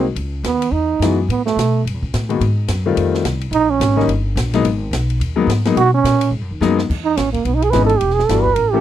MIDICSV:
0, 0, Header, 1, 5, 480
1, 0, Start_track
1, 0, Key_signature, 5, "minor"
1, 0, Tempo, 279851
1, 298, Time_signature, 4, 2, 24, 8
1, 15102, End_track
2, 0, Start_track
2, 0, Title_t, "Trombone"
2, 0, Program_c, 0, 57
2, 780, Note_on_c, 0, 59, 80
2, 1231, Note_on_c, 0, 63, 82
2, 1257, Note_off_c, 0, 59, 0
2, 2009, Note_off_c, 0, 63, 0
2, 2219, Note_on_c, 0, 59, 78
2, 2483, Note_off_c, 0, 59, 0
2, 2497, Note_on_c, 0, 57, 90
2, 3130, Note_off_c, 0, 57, 0
2, 6055, Note_on_c, 0, 63, 107
2, 6351, Note_on_c, 0, 61, 94
2, 6377, Note_off_c, 0, 63, 0
2, 7025, Note_off_c, 0, 61, 0
2, 9893, Note_on_c, 0, 66, 120
2, 10160, Note_off_c, 0, 66, 0
2, 10187, Note_on_c, 0, 61, 105
2, 10815, Note_off_c, 0, 61, 0
2, 12086, Note_on_c, 0, 63, 92
2, 12291, Note_on_c, 0, 61, 80
2, 12316, Note_off_c, 0, 63, 0
2, 12552, Note_off_c, 0, 61, 0
2, 12562, Note_on_c, 0, 58, 70
2, 12776, Note_on_c, 0, 59, 73
2, 12802, Note_off_c, 0, 58, 0
2, 12940, Note_on_c, 0, 63, 82
2, 12966, Note_off_c, 0, 59, 0
2, 13088, Note_on_c, 0, 68, 92
2, 13114, Note_off_c, 0, 63, 0
2, 13211, Note_on_c, 0, 71, 103
2, 13237, Note_off_c, 0, 68, 0
2, 13468, Note_off_c, 0, 71, 0
2, 13478, Note_on_c, 0, 69, 97
2, 13693, Note_on_c, 0, 67, 85
2, 13718, Note_off_c, 0, 69, 0
2, 13955, Note_on_c, 0, 68, 98
2, 13980, Note_off_c, 0, 67, 0
2, 14174, Note_on_c, 0, 69, 86
2, 14199, Note_off_c, 0, 68, 0
2, 14444, Note_on_c, 0, 71, 99
2, 14470, Note_off_c, 0, 69, 0
2, 14650, Note_on_c, 0, 70, 89
2, 14676, Note_off_c, 0, 71, 0
2, 14939, Note_on_c, 0, 67, 88
2, 14965, Note_off_c, 0, 70, 0
2, 15102, Note_off_c, 0, 67, 0
2, 15102, End_track
3, 0, Start_track
3, 0, Title_t, "Grand piano"
3, 0, Program_c, 1, 0
3, 1751, Note_on_c, 1, 56, 67
3, 1752, Note_on_c, 1, 52, 77
3, 1753, Note_on_c, 1, 63, 64
3, 1756, Note_on_c, 1, 59, 66
3, 1760, Note_on_c, 1, 66, 78
3, 2000, Note_off_c, 1, 56, 0
3, 2001, Note_off_c, 1, 52, 0
3, 2001, Note_off_c, 1, 63, 0
3, 2003, Note_off_c, 1, 59, 0
3, 2005, Note_off_c, 1, 66, 0
3, 3928, Note_on_c, 1, 56, 65
3, 3933, Note_on_c, 1, 51, 75
3, 3939, Note_on_c, 1, 59, 69
3, 3940, Note_on_c, 1, 58, 67
3, 3945, Note_on_c, 1, 66, 75
3, 4113, Note_off_c, 1, 56, 0
3, 4116, Note_off_c, 1, 51, 0
3, 4119, Note_off_c, 1, 59, 0
3, 4120, Note_off_c, 1, 58, 0
3, 4122, Note_off_c, 1, 66, 0
3, 4899, Note_on_c, 1, 57, 73
3, 4902, Note_on_c, 1, 55, 68
3, 4906, Note_on_c, 1, 60, 71
3, 4909, Note_on_c, 1, 51, 85
3, 4915, Note_on_c, 1, 65, 82
3, 5539, Note_off_c, 1, 57, 0
3, 5541, Note_off_c, 1, 55, 0
3, 5543, Note_off_c, 1, 60, 0
3, 5545, Note_off_c, 1, 51, 0
3, 5548, Note_off_c, 1, 65, 0
3, 6791, Note_on_c, 1, 55, 71
3, 6793, Note_on_c, 1, 51, 74
3, 6809, Note_on_c, 1, 63, 88
3, 6813, Note_on_c, 1, 61, 74
3, 6816, Note_on_c, 1, 58, 75
3, 6985, Note_off_c, 1, 55, 0
3, 6986, Note_off_c, 1, 51, 0
3, 6994, Note_off_c, 1, 63, 0
3, 6996, Note_off_c, 1, 61, 0
3, 6998, Note_off_c, 1, 58, 0
3, 7783, Note_on_c, 1, 54, 86
3, 7784, Note_on_c, 1, 56, 77
3, 7788, Note_on_c, 1, 58, 77
3, 7792, Note_on_c, 1, 59, 77
3, 7797, Note_on_c, 1, 63, 105
3, 7961, Note_off_c, 1, 54, 0
3, 7961, Note_off_c, 1, 56, 0
3, 7963, Note_off_c, 1, 58, 0
3, 7965, Note_off_c, 1, 59, 0
3, 7968, Note_off_c, 1, 63, 0
3, 9189, Note_on_c, 1, 56, 80
3, 9191, Note_on_c, 1, 54, 91
3, 9203, Note_on_c, 1, 58, 79
3, 9206, Note_on_c, 1, 63, 88
3, 9212, Note_on_c, 1, 59, 84
3, 9383, Note_off_c, 1, 56, 0
3, 9384, Note_off_c, 1, 54, 0
3, 9390, Note_off_c, 1, 58, 0
3, 9392, Note_off_c, 1, 63, 0
3, 9395, Note_off_c, 1, 59, 0
3, 9700, Note_on_c, 1, 56, 69
3, 9703, Note_on_c, 1, 59, 73
3, 9709, Note_on_c, 1, 54, 80
3, 9712, Note_on_c, 1, 63, 92
3, 9716, Note_on_c, 1, 58, 79
3, 9879, Note_off_c, 1, 56, 0
3, 9880, Note_off_c, 1, 59, 0
3, 9883, Note_off_c, 1, 54, 0
3, 9885, Note_off_c, 1, 63, 0
3, 9887, Note_off_c, 1, 58, 0
3, 11341, Note_on_c, 1, 54, 96
3, 11345, Note_on_c, 1, 56, 84
3, 11351, Note_on_c, 1, 59, 79
3, 11351, Note_on_c, 1, 63, 105
3, 11355, Note_on_c, 1, 58, 83
3, 11595, Note_off_c, 1, 54, 0
3, 11597, Note_off_c, 1, 56, 0
3, 11600, Note_off_c, 1, 59, 0
3, 11600, Note_off_c, 1, 63, 0
3, 11602, Note_off_c, 1, 58, 0
3, 13247, Note_on_c, 1, 52, 71
3, 13258, Note_on_c, 1, 56, 61
3, 13272, Note_on_c, 1, 59, 64
3, 13276, Note_on_c, 1, 61, 65
3, 13281, Note_on_c, 1, 63, 80
3, 13508, Note_off_c, 1, 52, 0
3, 13514, Note_off_c, 1, 56, 0
3, 13521, Note_off_c, 1, 59, 0
3, 13523, Note_off_c, 1, 61, 0
3, 13525, Note_off_c, 1, 63, 0
3, 14235, Note_on_c, 1, 59, 58
3, 14236, Note_on_c, 1, 52, 64
3, 14236, Note_on_c, 1, 55, 60
3, 14242, Note_on_c, 1, 66, 73
3, 14243, Note_on_c, 1, 62, 57
3, 14482, Note_off_c, 1, 59, 0
3, 14483, Note_off_c, 1, 52, 0
3, 14483, Note_off_c, 1, 55, 0
3, 14486, Note_off_c, 1, 62, 0
3, 14486, Note_off_c, 1, 66, 0
3, 14973, Note_on_c, 1, 52, 76
3, 14983, Note_on_c, 1, 58, 76
3, 14997, Note_on_c, 1, 61, 70
3, 14998, Note_on_c, 1, 57, 76
3, 15005, Note_on_c, 1, 69, 83
3, 15102, Note_off_c, 1, 52, 0
3, 15102, Note_off_c, 1, 57, 0
3, 15102, Note_off_c, 1, 58, 0
3, 15102, Note_off_c, 1, 61, 0
3, 15102, Note_off_c, 1, 69, 0
3, 15102, End_track
4, 0, Start_track
4, 0, Title_t, "Upright bass"
4, 0, Program_c, 2, 32
4, 0, Note_on_c, 2, 36, 90
4, 256, Note_off_c, 2, 36, 0
4, 267, Note_on_c, 2, 37, 95
4, 737, Note_off_c, 2, 37, 0
4, 747, Note_on_c, 2, 39, 94
4, 1215, Note_off_c, 2, 39, 0
4, 1225, Note_on_c, 2, 40, 90
4, 1696, Note_off_c, 2, 40, 0
4, 1706, Note_on_c, 2, 42, 94
4, 2188, Note_off_c, 2, 42, 0
4, 2204, Note_on_c, 2, 45, 92
4, 2672, Note_off_c, 2, 45, 0
4, 2682, Note_on_c, 2, 47, 95
4, 3157, Note_off_c, 2, 47, 0
4, 3172, Note_on_c, 2, 43, 89
4, 3329, Note_off_c, 2, 43, 0
4, 3329, Note_on_c, 2, 40, 54
4, 3468, Note_off_c, 2, 40, 0
4, 3479, Note_on_c, 2, 37, 66
4, 3638, Note_off_c, 2, 37, 0
4, 3662, Note_on_c, 2, 45, 93
4, 4114, Note_off_c, 2, 45, 0
4, 4125, Note_on_c, 2, 44, 95
4, 4589, Note_off_c, 2, 44, 0
4, 4599, Note_on_c, 2, 42, 94
4, 5076, Note_off_c, 2, 42, 0
4, 5092, Note_on_c, 2, 41, 89
4, 5549, Note_off_c, 2, 41, 0
4, 5559, Note_on_c, 2, 36, 93
4, 6008, Note_off_c, 2, 36, 0
4, 6018, Note_on_c, 2, 34, 98
4, 6505, Note_off_c, 2, 34, 0
4, 6514, Note_on_c, 2, 32, 99
4, 6984, Note_off_c, 2, 32, 0
4, 6994, Note_on_c, 2, 31, 93
4, 7461, Note_off_c, 2, 31, 0
4, 7471, Note_on_c, 2, 34, 105
4, 7924, Note_off_c, 2, 34, 0
4, 7935, Note_on_c, 2, 32, 99
4, 8415, Note_off_c, 2, 32, 0
4, 8425, Note_on_c, 2, 35, 95
4, 8908, Note_off_c, 2, 35, 0
4, 8916, Note_on_c, 2, 39, 90
4, 9370, Note_off_c, 2, 39, 0
4, 9380, Note_on_c, 2, 44, 105
4, 9865, Note_off_c, 2, 44, 0
4, 9875, Note_on_c, 2, 47, 101
4, 10352, Note_off_c, 2, 47, 0
4, 10360, Note_on_c, 2, 46, 102
4, 10812, Note_off_c, 2, 46, 0
4, 10822, Note_on_c, 2, 44, 97
4, 10996, Note_off_c, 2, 44, 0
4, 10996, Note_on_c, 2, 42, 59
4, 11150, Note_off_c, 2, 42, 0
4, 11160, Note_on_c, 2, 39, 69
4, 11318, Note_off_c, 2, 39, 0
4, 11330, Note_on_c, 2, 42, 97
4, 11800, Note_off_c, 2, 42, 0
4, 11828, Note_on_c, 2, 40, 95
4, 12289, Note_off_c, 2, 40, 0
4, 12304, Note_on_c, 2, 33, 89
4, 12767, Note_off_c, 2, 33, 0
4, 12774, Note_on_c, 2, 35, 86
4, 13243, Note_off_c, 2, 35, 0
4, 13260, Note_on_c, 2, 32, 102
4, 13725, Note_off_c, 2, 32, 0
4, 13747, Note_on_c, 2, 28, 90
4, 14209, Note_off_c, 2, 28, 0
4, 14219, Note_on_c, 2, 31, 96
4, 14670, Note_off_c, 2, 31, 0
4, 14680, Note_on_c, 2, 33, 92
4, 15102, Note_off_c, 2, 33, 0
4, 15102, End_track
5, 0, Start_track
5, 0, Title_t, "Drums"
5, 279, Note_on_c, 9, 51, 66
5, 451, Note_off_c, 9, 51, 0
5, 762, Note_on_c, 9, 44, 57
5, 762, Note_on_c, 9, 51, 83
5, 764, Note_on_c, 9, 38, 78
5, 934, Note_off_c, 9, 44, 0
5, 934, Note_off_c, 9, 51, 0
5, 935, Note_off_c, 9, 38, 0
5, 1061, Note_on_c, 9, 51, 79
5, 1232, Note_off_c, 9, 51, 0
5, 1754, Note_on_c, 9, 44, 59
5, 1754, Note_on_c, 9, 51, 79
5, 1756, Note_on_c, 9, 38, 73
5, 1926, Note_off_c, 9, 44, 0
5, 1926, Note_off_c, 9, 51, 0
5, 1928, Note_off_c, 9, 38, 0
5, 2230, Note_on_c, 9, 51, 65
5, 2401, Note_off_c, 9, 51, 0
5, 2518, Note_on_c, 9, 38, 60
5, 2690, Note_off_c, 9, 38, 0
5, 2723, Note_on_c, 9, 44, 67
5, 2723, Note_on_c, 9, 51, 78
5, 2725, Note_on_c, 9, 38, 86
5, 2895, Note_off_c, 9, 44, 0
5, 2895, Note_off_c, 9, 51, 0
5, 2896, Note_off_c, 9, 38, 0
5, 3212, Note_on_c, 9, 51, 72
5, 3384, Note_off_c, 9, 51, 0
5, 3473, Note_on_c, 9, 36, 51
5, 3645, Note_off_c, 9, 36, 0
5, 3667, Note_on_c, 9, 44, 65
5, 3667, Note_on_c, 9, 51, 72
5, 3668, Note_on_c, 9, 38, 81
5, 3838, Note_off_c, 9, 44, 0
5, 3838, Note_off_c, 9, 51, 0
5, 3840, Note_off_c, 9, 38, 0
5, 3946, Note_on_c, 9, 51, 53
5, 4117, Note_off_c, 9, 51, 0
5, 4138, Note_on_c, 9, 51, 66
5, 4310, Note_off_c, 9, 51, 0
5, 4603, Note_on_c, 9, 44, 66
5, 4603, Note_on_c, 9, 51, 80
5, 4605, Note_on_c, 9, 38, 77
5, 4775, Note_off_c, 9, 44, 0
5, 4775, Note_off_c, 9, 51, 0
5, 4777, Note_off_c, 9, 38, 0
5, 5094, Note_on_c, 9, 51, 76
5, 5265, Note_off_c, 9, 51, 0
5, 5393, Note_on_c, 9, 38, 56
5, 5564, Note_off_c, 9, 38, 0
5, 5574, Note_on_c, 9, 44, 65
5, 5574, Note_on_c, 9, 51, 76
5, 5576, Note_on_c, 9, 38, 79
5, 5745, Note_off_c, 9, 44, 0
5, 5745, Note_off_c, 9, 51, 0
5, 5747, Note_off_c, 9, 38, 0
5, 5856, Note_on_c, 9, 51, 52
5, 6027, Note_off_c, 9, 51, 0
5, 6049, Note_on_c, 9, 51, 75
5, 6221, Note_off_c, 9, 51, 0
5, 6535, Note_on_c, 9, 44, 70
5, 6535, Note_on_c, 9, 51, 84
5, 6536, Note_on_c, 9, 38, 89
5, 6699, Note_off_c, 9, 38, 0
5, 6699, Note_on_c, 9, 38, 29
5, 6706, Note_off_c, 9, 44, 0
5, 6706, Note_off_c, 9, 51, 0
5, 6854, Note_off_c, 9, 38, 0
5, 6854, Note_on_c, 9, 38, 51
5, 7013, Note_on_c, 9, 51, 71
5, 7026, Note_off_c, 9, 38, 0
5, 7185, Note_off_c, 9, 51, 0
5, 7497, Note_on_c, 9, 44, 64
5, 7497, Note_on_c, 9, 51, 86
5, 7499, Note_on_c, 9, 38, 85
5, 7669, Note_off_c, 9, 44, 0
5, 7669, Note_off_c, 9, 51, 0
5, 7671, Note_off_c, 9, 38, 0
5, 7779, Note_on_c, 9, 51, 54
5, 7780, Note_on_c, 9, 38, 48
5, 7950, Note_off_c, 9, 51, 0
5, 7952, Note_off_c, 9, 38, 0
5, 7971, Note_on_c, 9, 51, 74
5, 8143, Note_off_c, 9, 51, 0
5, 8455, Note_on_c, 9, 44, 73
5, 8455, Note_on_c, 9, 51, 89
5, 8457, Note_on_c, 9, 38, 91
5, 8627, Note_off_c, 9, 44, 0
5, 8627, Note_off_c, 9, 51, 0
5, 8628, Note_off_c, 9, 38, 0
5, 8746, Note_on_c, 9, 51, 59
5, 8918, Note_off_c, 9, 51, 0
5, 8939, Note_on_c, 9, 51, 72
5, 9110, Note_off_c, 9, 51, 0
5, 9427, Note_on_c, 9, 44, 58
5, 9427, Note_on_c, 9, 51, 80
5, 9428, Note_on_c, 9, 38, 78
5, 9598, Note_off_c, 9, 44, 0
5, 9598, Note_off_c, 9, 51, 0
5, 9600, Note_off_c, 9, 38, 0
5, 9697, Note_on_c, 9, 51, 53
5, 9699, Note_on_c, 9, 38, 71
5, 9869, Note_off_c, 9, 51, 0
5, 9871, Note_off_c, 9, 38, 0
5, 9898, Note_on_c, 9, 51, 70
5, 10070, Note_off_c, 9, 51, 0
5, 10381, Note_on_c, 9, 44, 67
5, 10381, Note_on_c, 9, 51, 86
5, 10383, Note_on_c, 9, 38, 82
5, 10553, Note_off_c, 9, 44, 0
5, 10553, Note_off_c, 9, 51, 0
5, 10554, Note_off_c, 9, 38, 0
5, 10652, Note_on_c, 9, 51, 83
5, 10824, Note_off_c, 9, 51, 0
5, 11351, Note_on_c, 9, 44, 60
5, 11352, Note_on_c, 9, 38, 57
5, 11522, Note_off_c, 9, 44, 0
5, 11524, Note_off_c, 9, 38, 0
5, 11637, Note_on_c, 9, 38, 80
5, 11809, Note_off_c, 9, 38, 0
5, 11831, Note_on_c, 9, 36, 81
5, 11843, Note_on_c, 9, 49, 77
5, 12003, Note_off_c, 9, 36, 0
5, 12014, Note_off_c, 9, 49, 0
5, 12305, Note_on_c, 9, 44, 65
5, 12305, Note_on_c, 9, 51, 81
5, 12306, Note_on_c, 9, 38, 82
5, 12476, Note_off_c, 9, 44, 0
5, 12476, Note_off_c, 9, 51, 0
5, 12478, Note_off_c, 9, 38, 0
5, 12593, Note_on_c, 9, 36, 51
5, 12595, Note_on_c, 9, 51, 50
5, 12765, Note_off_c, 9, 36, 0
5, 12767, Note_off_c, 9, 51, 0
5, 12783, Note_on_c, 9, 51, 59
5, 12954, Note_off_c, 9, 51, 0
5, 13075, Note_on_c, 9, 51, 50
5, 13247, Note_off_c, 9, 51, 0
5, 13260, Note_on_c, 9, 44, 50
5, 13260, Note_on_c, 9, 51, 67
5, 13262, Note_on_c, 9, 38, 79
5, 13431, Note_off_c, 9, 44, 0
5, 13431, Note_off_c, 9, 51, 0
5, 13433, Note_off_c, 9, 38, 0
5, 13540, Note_on_c, 9, 51, 52
5, 13711, Note_off_c, 9, 51, 0
5, 13733, Note_on_c, 9, 51, 69
5, 13896, Note_on_c, 9, 38, 32
5, 13904, Note_off_c, 9, 51, 0
5, 14055, Note_off_c, 9, 38, 0
5, 14055, Note_on_c, 9, 38, 47
5, 14224, Note_on_c, 9, 44, 63
5, 14224, Note_on_c, 9, 51, 81
5, 14226, Note_off_c, 9, 38, 0
5, 14226, Note_on_c, 9, 38, 75
5, 14396, Note_off_c, 9, 44, 0
5, 14396, Note_off_c, 9, 51, 0
5, 14398, Note_off_c, 9, 38, 0
5, 14509, Note_on_c, 9, 36, 54
5, 14680, Note_off_c, 9, 36, 0
5, 14680, Note_on_c, 9, 51, 70
5, 14852, Note_off_c, 9, 51, 0
5, 15102, End_track
0, 0, End_of_file